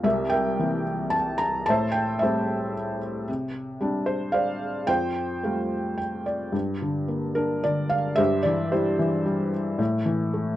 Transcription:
felt piano
0.04 C2 G4 A#4 E5
0.30 A#4 E5 G5
0.59 E3 A#3 C4
1.10 A5
1.38 A#5
1.66 A2 A5
1.70 C5 E5
1.91 G5
2.19 G3 A3 C4 G4 C5 E5
3.28 C3
3.81 G3 C4 D4
4.06 C5
4.32 C5 D5 F5
4.87 F2 C5 G5
5.43 G3 A3 F4
5.98 G5
6.26 D5
6.53 G2
6.82 D3
7.08 A#3
7.35 D4 A#4
7.64 D3 D5
7.90 F5
8.16 G2 G4 C5 E5
8.43 E3 D5
8.72 G3 E4 G4 C5
8.99 E3
9.25 G3
9.79 A2
10.06 E3
10.34 A3

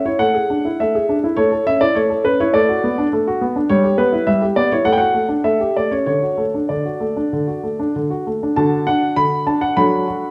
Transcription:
grand piano
0.06 E4 C#5
0.19 A3 F#5
0.34 G#4
0.50 D4
0.65 E4
0.80 A3 E5
0.95 G#4
1.09 D4
1.24 E4
1.37 A3 C#5
1.52 A4
1.67 C#4 E5
1.81 E4 D5
1.95 A3 C#5
2.10 A4
2.25 C#4 B4
2.40 E4 C#5
2.54 A3 D5
2.69 F#4
2.84 B3
2.98 D4
3.13 A3
3.27 F#4
3.41 B3
3.56 D4
3.69 G3 C#5
3.84 G4
3.98 B3 B4
4.13 E4
4.27 G3 E5
4.42 G4
4.56 B3 D5
4.72 E4 C#5
4.85 A3 F#5
4.92 G5
4.98 F#4 F#5
5.14 A3
5.29 D4
5.44 A3 E5
5.60 G4
5.77 A3 D5
5.91 C#4 C#5
6.06 D3 C#5
6.22 F#4
6.38 A3
6.54 D4
6.69 D3 D5
6.86 F#4
7.00 A3
7.17 D4
7.33 D3
7.47 F#4
7.64 A3
7.79 D4
7.96 D3
8.10 F#4
8.27 A3
8.43 D4
8.56 D3 D4 F#4 A5
8.87 D4 F#5
9.16 D3 B5
9.47 D4 A5
9.61 F#5
9.77 F#3 D4 A4 B5
10.08 F#4

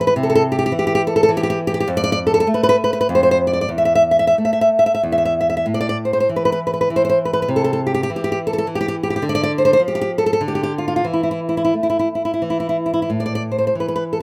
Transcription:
nylon-string guitar
Already playing: E3
0.01 B4
0.07 B4
0.16 C3
0.23 A4
0.30 A4
0.35 A4
0.52 G4
0.59 G4
0.66 G4
0.72 E3
0.79 G4
0.87 G4
0.95 G4
1.07 A4
1.16 A4
1.23 A4
1.29 E3
1.37 G4
1.43 G4
1.50 G4
1.67 G4
1.74 G4
1.80 G4
1.88 F2
1.97 D5
2.04 D5
2.12 D5
2.27 A4
2.34 A4
2.40 A4
2.47 A3
2.54 B4
2.63 B4
2.69 B4
2.84 B4
2.93 B4
3.01 B4
3.09 F2
3.15 C5
3.23 C5
3.31 C5
3.47 D5
3.53 D5
3.61 D5
3.69 E2
3.78 E5
3.85 E5
3.95 E5
4.11 E5
4.19 E5
4.27 E5
4.38 A3
4.45 E5
4.53 E5
4.61 E5
4.79 E5
4.86 E5
4.95 E5
5.03 E2
5.12 E5
5.18 E5
5.25 E5
5.41 E5
5.50 E5
5.57 E5
5.66 A2
5.74 D5
5.81 D5
5.89 D5
6.05 C5
6.13 C5
6.20 C5
6.29 E3
6.36 B4
6.45 B4
6.52 B4
6.67 B4
6.74 B4
6.81 B4
6.90 E3
6.96 C5
7.05 C5
7.09 C5
7.25 B4
7.33 B4
7.42 B4
7.48 C3
7.56 A4
7.64 A4
7.73 A4
7.87 G4
7.94 G4
8.03 G4
8.10 E3
8.16 G4
8.24 G4
8.32 G4
8.47 A4
8.53 A4
8.58 A4
8.67 E3
8.75 G4
8.81 G4
8.88 G4
9.03 G4
9.10 G4
9.16 G4
9.22 D3
9.29 D5
9.35 D5
9.43 D5
9.58 C5
9.65 C5
9.73 C5
9.79 F3
9.88 G4
9.95 G4
10.01 G4
10.18 A4
10.26 A4
10.33 A4
10.41 D3
10.48 G4
10.55 G4
10.63 G4
10.78 F4
10.88 F4
10.96 F4
11.04 E3
11.13 E4
11.23 E4
11.31 E4
11.49 E4
11.57 E4
11.65 E4
11.74 A3
11.83 E4
11.90 E4
11.99 E4
12.15 E4
12.25 E4
12.34 E4
12.42 E3
12.50 E4
12.60 E4
12.69 E4
12.86 E4
12.94 E4
13.02 E4
13.10 A2
13.20 D5
13.26 D5
13.35 D5
13.52 C5
13.58 C5
13.67 C5
13.75 E3
13.80 B4
13.88 B4
13.96 B4
14.13 A4

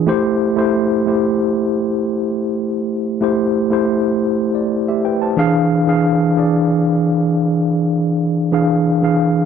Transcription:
tine electric piano
0.06 A3 E4 G4 C5
0.56 A3 E4 G4 C5
1.06 A3 E4 G4 C5
3.21 A3 E4 G4 C5
3.70 A3 E4 G4 C5
4.55 D5
4.88 G4 E5
5.05 B4 G5
5.22 C5 A5
5.37 E3 D4 G#4 F5
5.87 E3 D4 G#4 F5
6.36 E3 D4 G#4 D5
8.52 E3 D4 G#4 F5
9.02 E3 D4 G#4 F5

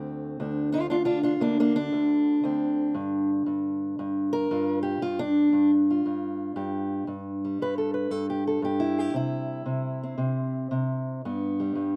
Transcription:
steel-string acoustic guitar
Already playing: D2 A3 C4
0.40 D2 D4
0.72 D4 F4
0.90 D2 D4 F4
1.05 D4 F4
1.23 D4 F4
1.40 D2 A#3 D4
1.60 A#3 D4
1.76 D3 D4
1.92 D2
2.43 D2 C4
2.94 G2
3.46 G2
3.99 G2
4.33 A#4
4.51 G2 F4
4.83 G4
5.01 G2 F4
5.19 D4
5.53 G2
5.91 F4
6.06 G2
6.56 G2 G4
7.07 G2
7.45 G3
7.62 G2 B4
7.78 A4
7.94 B4
8.11 G2 A4
8.30 G4
8.47 A4
8.62 G2 G4
8.80 E4
8.98 G4
9.14 C3 E4
9.66 C3
10.03 C4
10.18 C3
10.71 C3
11.25 G2 B3
11.60 G3
11.75 G2

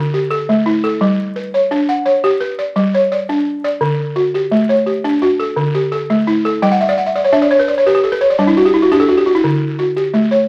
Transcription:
balafon
Already playing: D3 F#4
0.14 G4
0.31 A4
0.49 A3
0.66 E4
0.84 A4
1.01 G3
1.36 B4
1.54 C#5
1.71 D4
1.89 F#5
2.06 C#5
2.24 G4
2.41 B4
2.59 D5
2.76 G3
2.94 C#5
3.12 D5
3.29 D4
3.64 D5
3.81 D3
4.16 F#4
4.34 G4
4.51 A3
4.69 C#5
4.86 G4
5.04 D4
5.22 F#4
5.40 A4
5.56 D3
5.75 G4
5.92 A4
6.10 A3
6.27 E4
6.45 A4
6.62 G3 G5
6.72 F#5
6.81 E5
6.89 D5
6.98 F#5
7.06 E5
7.16 D5
7.24 C#5
7.33 D4 E5
7.42 D5
7.51 C#5
7.59 B4
7.68 D5
7.78 C#5
7.86 G4 B4
7.95 G4
8.04 A4
8.12 B4
8.21 C#5
8.30 D5
8.38 G3 D4
8.47 E4
8.57 F#4
8.65 G4
8.74 E4
8.82 F#4
8.91 D4 G4
9.00 A4
9.08 F#4
9.18 G4
9.26 F#4
9.35 E4
9.44 D3
9.79 F#4
9.96 G4
10.13 A3
10.31 C#5

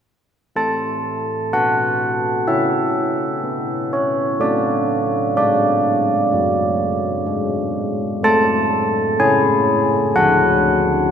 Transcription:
church bells
0.56 A3 E4 A5
1.53 B3 F#5
2.48 C#4 E5
3.44 B3
3.93 C#5
4.40 A3 F#4 D5
5.37 G#3 D5
6.33 F#3
7.26 G#3
8.23 A3 A4 A5
9.19 C#4 G#5
10.15 D3 A4 F#5

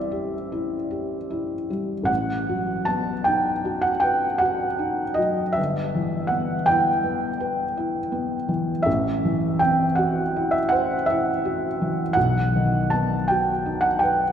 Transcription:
felt piano
Already playing: A1 G3 C4 E4 C5 D5 E5
0.12 G4
0.52 E4
0.91 G4
1.30 E4
1.70 G3
2.03 A1 F#5
2.49 F#3
2.85 B3 A5
3.24 D#4 G5
3.65 F#4
3.82 F#5
4.00 B4 G5
4.38 F#4 F#5
4.79 D#4
5.14 F#3 D#5
5.52 E5
5.56 G1
5.95 E3
6.27 B3 F#5
6.66 E4 G5
7.04 B3
7.40 B4
7.77 E4
8.12 B3
8.49 E3
8.82 A1 E5
9.25 E3
9.59 C4 G5
9.95 F#4 F#5
10.36 E4
10.51 E5
10.69 C5 F#5
11.06 E5
11.10 E4
11.45 F#4
11.82 E3
12.13 B1 F#5
12.56 D#3
12.90 B3 A5
13.28 F#4 G5
13.66 D#4
13.81 F#5
13.99 B4 G5

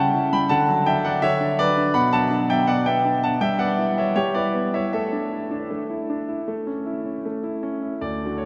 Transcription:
grand piano
Already playing: C#3 C#4 A5
0.00 F#5
0.14 E4
0.32 G3 G5 B5
0.49 D3 F#5 A5
0.67 F#3
0.86 D4 E5 G5
1.05 F#3 D5 F#5
1.22 D3 C#5 E5
1.40 D4
1.59 F#3 B4 D5
1.77 D4
1.94 B2 F#5 B5
2.13 F#3 F#5 A5
2.31 D4
2.49 F#3 E5 G5
2.67 B2 D5 F#5
2.86 B3 E5 G5
3.05 D4
3.23 F#3 F#5 A5
3.41 G3 E5 G5
3.59 B3 D5 F#5
3.78 E4
3.97 B3 C#5 E5
4.16 G3 G4 C#5
4.34 E4 B4 D5
4.54 B3
4.73 E4 C#5 E5
4.93 A3 A4 E5
5.13 D4
5.32 E4
5.51 D4
5.70 A3
5.90 E4
6.10 D4
6.28 E4
6.48 A3
6.67 C#4
6.86 E4
7.05 C#4
7.25 A3
7.43 E4
7.63 C#4
7.82 E4
8.01 D2 D5
8.26 A3 D4 F#4
8.38 C#5

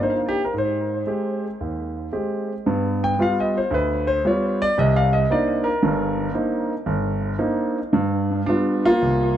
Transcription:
grand piano
0.00 A#3 C4 D4 D#4 C5
0.15 D#4
0.29 G4
0.45 A#4
0.54 G#2
0.58 C5
1.07 G#3 C4 G4
1.61 D#2
2.13 G#3 C4 G4
2.66 G2 B3
3.04 G5
3.19 G3 B3 F4 F5
3.40 D#5
3.57 C5
3.71 D2 B4
4.07 C5
4.25 G3 B3 F4 C#5
4.62 D5
4.78 C2 C3 D#5
4.96 F5
5.13 D#5
5.30 A#3 C4 D4 D#4 D5
5.64 A#4
5.83 G1 G2
6.34 A#3 C4 D4 D#4
6.86 G1
7.39 A#3 C4 D4 D#4
7.93 G2
8.46 G3 B3 D4 F4
8.85 A#3 F4
9.02 C2 C3

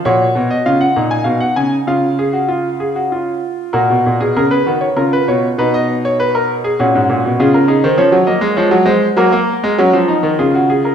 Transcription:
grand piano
0.05 A#2 F#4 C#5
0.35 B2
0.50 D#5
0.66 C#3 F4 F5
0.81 F#5
0.96 A#2 D#4
1.11 G#5
1.24 B2 F5
1.40 F#5
1.56 C#3 G#5
1.87 C#3 F4 F5
2.19 G#4
2.33 F#4
2.48 F4
2.80 G#4
2.96 F#4
3.12 F4
3.73 A#2 F#4 A#4
3.90 B2
4.06 A#2
4.20 B2 G#4
4.36 C#3 G#4 A#4
4.51 B4
4.66 D#3 F#4
4.81 C#5
4.96 C#3 F4 A#4
5.13 B4
5.28 B2 C#5
5.58 B2 D#4 B4
5.74 D#5
6.05 C#5
6.20 B4
6.35 A#4
6.64 G#4
6.79 A#2 C#4 F#4
6.95 G#2
7.10 A#2
7.26 B2
7.40 C#3 F4 G#4
7.54 A#4
7.68 D#4 G#4
7.84 D#3 C5
7.98 F3 C#4 C#5
8.12 F#3
8.27 A#3 D#5
8.41 G#3
8.57 F3 G#3 C#5
8.71 F#3
8.86 G#3 C5
9.17 F#3 A#3 A#4
9.32 A#3
9.64 G#3
9.78 F#3 C#4
9.93 F3
10.08 D#4
10.23 D#3
10.39 C#3 F4 G#4
10.55 F#4
10.70 G#4
10.85 A#4

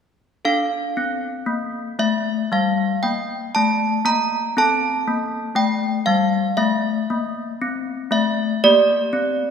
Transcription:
handbells
0.45 D4 A4 F5
0.97 C4
1.46 A#3
1.99 A3 E5
2.52 G3 F5
3.03 A#3 G5
3.55 A3 A5
4.05 A#3 A#5
4.57 C4 A4 A5
5.08 A#3
5.55 A3 G5
6.06 G3 F5
6.57 A3 E5
7.10 A#3
7.62 C4
8.11 A3 E5
8.64 A#3 G4 D5
9.13 C4

